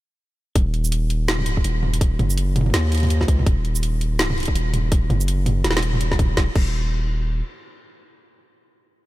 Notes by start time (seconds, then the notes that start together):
0.56 D#1, kick, closed hi-hat
0.74 closed hi-hat
0.85 shaker
0.92 closed hi-hat
1.10 closed hi-hat
1.28 D1, snare, closed hi-hat, shaker
1.39 mid tom
1.46 closed hi-hat
1.57 kick
1.64 D#1, closed hi-hat
1.83 mid tom
1.94 closed hi-hat
2.01 kick, closed hi-hat
2.19 F#1, closed hi-hat, mid tom
2.30 shaker
2.38 closed hi-hat
2.56 closed hi-hat, mid tom
2.61 mid tom
2.66 mid tom
2.70 snare, closed hi-hat, mid tom
2.74 D#2
2.92 closed hi-hat
2.95 closed hi-hat
2.98 closed hi-hat
3.00 closed hi-hat
3.03 closed hi-hat, mid tom
3.05 closed hi-hat
3.07 closed hi-hat
3.09 closed hi-hat
3.10 closed hi-hat
3.21 D2, kick, snare
3.28 kick, closed hi-hat
3.39 mid tom
3.46 D#1, kick, closed hi-hat
3.65 closed hi-hat
3.75 shaker
3.83 closed hi-hat
4.01 closed hi-hat
4.19 snare, closed hi-hat, shaker
4.30 mid tom
4.38 closed hi-hat
4.40 closed hi-hat
4.43 closed hi-hat
4.45 kick, closed hi-hat
4.55 D#1, closed hi-hat
4.74 closed hi-hat, mid tom
4.92 kick, closed hi-hat
5.10 F#1, closed hi-hat, mid tom
5.21 shaker
5.28 closed hi-hat
5.46 closed hi-hat, mid tom
5.64 D#1, snare, closed hi-hat
5.71 snare
5.77 snare
5.83 closed hi-hat
5.93 mid tom
6.01 closed hi-hat
6.12 kick, snare
6.19 kick, closed hi-hat, mid tom
6.37 D#1, kick, snare
6.55 D#1, kick, crash